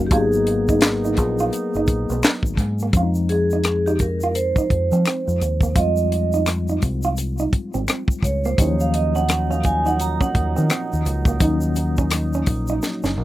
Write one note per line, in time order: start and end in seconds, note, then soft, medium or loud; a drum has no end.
0.00 0.11 F#1 medium
0.00 0.11 F#3 medium
0.00 0.12 A#3 medium
0.00 0.12 C#4 medium
0.00 0.13 D#4 medium
0.00 0.11 F#4 loud
0.07 0.12 G4 medium
0.11 1.18 G#1 medium
0.11 2.90 F#3 medium
0.11 2.54 A#3 medium
0.11 2.90 A#3 medium
0.11 2.54 B3 medium
0.11 2.91 B3 medium
0.11 2.54 D#4 medium
0.11 0.26 F4 medium
0.11 2.20 G#4 medium
0.11 kick loud
0.11 closed hi-hat medium
0.11 shaker medium
0.15 2.92 D#4 medium
0.33 shaker soft
0.47 muted hollow-body jazz guitar stroke soft
0.47 closed hi-hat medium
0.68 0.78 D#4 medium
0.68 kick medium
0.68 shaker soft
0.81 finger snap medium
0.81 snare loud
0.81 clap medium
0.81 closed hi-hat medium
0.81 shaker medium
1.05 1.13 D#4 medium
1.05 shaker soft
1.17 1.49 A#1 medium
1.17 muted hollow-body jazz guitar stroke soft
1.17 kick medium
1.17 closed hi-hat medium
1.17 shaker soft
1.39 1.49 F4 medium
1.39 shaker soft
1.53 closed hi-hat medium
1.53 shaker medium
1.74 1.87 F#1 medium
1.74 1.85 D#4 medium
1.74 shaker soft
1.87 2.07 A#1 medium
1.87 muted hollow-body jazz guitar stroke soft
1.87 kick medium
1.87 closed hi-hat medium
1.87 shaker soft
2.10 2.22 B1 medium
2.10 2.20 B3 medium
2.10 shaker soft
2.23 2.39 B3 medium
2.23 finger snap medium
2.23 snare loud
2.23 clap medium
2.23 closed hi-hat medium
2.23 shaker medium
2.43 2.56 G#1 medium
2.43 kick medium
2.43 shaker soft
2.57 2.90 G#2 medium
2.57 muted hollow-body jazz guitar stroke soft
2.57 kick medium
2.57 closed hi-hat medium
2.79 2.91 A#3 medium
2.79 shaker soft
2.93 4.52 F2 medium
2.93 5.71 F3 medium
2.93 5.72 G#3 medium
2.93 5.73 C4 medium
2.93 3.03 C#4 medium
2.93 kick loud
2.93 closed hi-hat medium
2.93 shaker medium
2.97 3.10 F4 medium
3.03 5.76 D#4 medium
3.15 shaker soft
3.29 3.88 G#4 medium
3.29 muted hollow-body jazz guitar stroke soft
3.29 closed hi-hat medium
3.51 3.61 D#4 medium
3.51 shaker soft
3.64 finger snap medium
3.64 cross-stick loud
3.64 closed hi-hat medium
3.64 shaker medium
3.86 3.96 D#4 medium
3.86 3.99 G4 medium
3.86 shaker soft
3.99 4.36 A#4 medium
3.99 muted hollow-body jazz guitar stroke soft
3.99 kick medium
3.99 closed hi-hat medium
3.99 shaker soft
4.21 4.32 F4 medium
4.21 shaker soft
4.35 5.72 C5 medium
4.35 closed hi-hat medium
4.35 shaker medium
4.56 4.66 D#4 medium
4.56 kick medium
4.56 shaker soft
4.70 4.90 F2 medium
4.70 muted hollow-body jazz guitar stroke soft
4.70 kick medium
4.70 closed hi-hat medium
4.92 5.04 F3 medium
4.92 5.01 C4 medium
4.92 shaker soft
5.06 5.21 C4 medium
5.06 finger snap medium
5.06 cross-stick loud
5.06 closed hi-hat medium
5.06 shaker medium
5.28 5.40 F2 medium
5.28 shaker soft
5.41 5.72 D#2 medium
5.41 muted hollow-body jazz guitar stroke soft
5.41 closed hi-hat medium
5.41 shaker medium
5.61 5.72 A#3 medium
5.61 kick medium
5.61 shaker soft
5.76 6.78 F2 medium
5.76 8.54 G3 medium
5.76 8.55 G#3 medium
5.76 8.55 C4 medium
5.76 5.90 F4 medium
5.76 8.56 F4 medium
5.76 6.43 D#5 medium
5.76 kick loud
5.76 closed hi-hat medium
5.76 shaker medium
5.97 shaker soft
6.12 muted hollow-body jazz guitar stroke soft
6.12 closed hi-hat medium
6.33 6.42 D#4 medium
6.33 shaker soft
6.46 finger snap medium
6.46 cross-stick loud
6.46 closed hi-hat medium
6.46 shaker medium
6.68 6.78 D#4 medium
6.68 shaker soft
6.82 7.46 C2 medium
6.82 muted hollow-body jazz guitar stroke soft
6.82 kick medium
6.82 closed hi-hat medium
6.82 shaker soft
7.03 7.13 F4 medium
7.03 shaker soft
7.17 closed hi-hat medium
7.17 shaker medium
7.38 7.48 D#4 medium
7.38 shaker soft
7.53 muted hollow-body jazz guitar stroke soft
7.53 muted fingered electric bass stroke soft
7.53 kick medium
7.53 closed hi-hat medium
7.74 7.87 G#1 medium
7.74 7.83 C4 medium
7.74 shaker soft
7.88 8.02 C4 medium
7.88 finger snap medium
7.88 cross-stick loud
7.88 closed hi-hat medium
7.88 shaker medium
8.08 kick medium
8.08 shaker soft
8.23 8.55 C#2 medium
8.23 8.44 C#5 medium
8.23 muted hollow-body jazz guitar stroke soft
8.23 kick medium
8.23 closed hi-hat medium
8.23 shaker medium
8.44 8.54 A#3 medium
8.44 8.59 C5 medium
8.44 shaker soft
8.58 10.17 D#2 loud
8.58 13.24 A#2 medium
8.58 13.24 F#3 medium
8.58 11.37 F#3 medium
8.58 11.37 A#3 medium
8.58 11.38 C#4 medium
8.58 13.24 D#4 medium
8.58 8.73 D#4 medium
8.58 8.80 C#5 medium
8.58 kick loud
8.58 closed hi-hat medium
8.58 shaker medium
8.62 8.68 E4 medium
8.68 11.42 F3 medium
8.80 8.94 F5 medium
8.80 shaker soft
8.94 9.16 D#5 medium
8.94 muted hollow-body jazz guitar stroke soft
8.94 closed hi-hat medium
9.15 9.24 C#4 medium
9.15 9.51 F#5 medium
9.15 shaker soft
9.29 finger snap medium
9.29 cross-stick loud
9.29 closed hi-hat medium
9.29 shaker medium
9.51 9.59 C#4 medium
9.51 9.65 F5 medium
9.51 shaker soft
9.63 9.87 G#5 loud
9.63 muted hollow-body jazz guitar stroke soft
9.63 kick medium
9.63 closed hi-hat medium
9.63 shaker soft
9.86 9.95 D#4 medium
9.86 10.00 F#5 loud
9.86 shaker soft
10.00 10.10 A#5 loud
10.00 closed hi-hat medium
10.00 shaker medium
10.21 10.30 C#4 medium
10.21 11.94 F#5 medium
10.21 kick medium
10.21 shaker soft
10.35 10.54 D#2 medium
10.35 muted hollow-body jazz guitar stroke soft
10.35 kick medium
10.35 closed hi-hat medium
10.56 10.69 D#3 medium
10.56 10.65 C4 medium
10.56 shaker soft
10.70 10.84 C4 medium
10.70 finger snap medium
10.70 cross-stick loud
10.70 closed hi-hat medium
10.70 shaker medium
10.93 11.05 D#2 medium
10.93 shaker soft
11.06 11.37 C#2 loud
11.06 muted hollow-body jazz guitar stroke soft
11.06 closed hi-hat medium
11.06 shaker medium
11.25 11.36 A#3 medium
11.25 kick loud
11.25 shaker soft
11.40 12.43 D#2 loud
11.40 13.24 F#3 medium
11.40 13.24 A#3 medium
11.40 13.24 C#4 medium
11.40 11.55 D#4 medium
11.40 13.24 D#4 medium
11.40 kick loud
11.40 closed hi-hat medium
11.40 shaker medium
11.61 shaker soft
11.76 muted hollow-body jazz guitar stroke soft
11.76 closed hi-hat medium
11.76 shaker soft
11.97 12.07 C#4 medium
11.97 kick medium
11.97 shaker soft
12.11 finger snap medium
12.11 cross-stick loud
12.11 closed hi-hat medium
12.11 shaker medium
12.33 12.43 C#4 medium
12.33 shaker soft
12.46 12.79 A#1 medium
12.46 muted hollow-body jazz guitar stroke soft
12.46 kick medium
12.46 closed hi-hat medium
12.46 shaker soft
12.67 12.78 D#4 medium
12.67 shaker soft
12.82 snare medium
12.82 shaker medium
13.03 13.16 F#1 medium
13.03 13.13 C#4 medium
13.03 snare soft
13.03 shaker soft
13.17 13.24 A#1 medium
13.17 muted hollow-body jazz guitar stroke soft